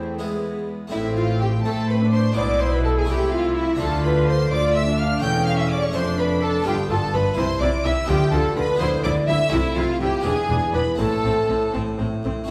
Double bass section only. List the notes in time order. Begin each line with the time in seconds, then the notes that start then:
0.91 A1
1.64 A2
2.37 B1
3.09 C2
3.80 D2
4.52 D2
5.23 E1
5.95 F1
6.66 G1
6.90 G1
7.13 G1
7.37 C2
7.60 C2
7.84 C2
8.09 D2
8.32 D2
8.56 D2
8.80 D2
9.03 D2
9.28 D2
9.52 C2
9.76 C2
10.01 C2
10.26 E1
10.50 E1
10.73 E1
10.99 A1
11.24 A1
11.50 A1
11.75 A1
11.99 A1
12.24 A1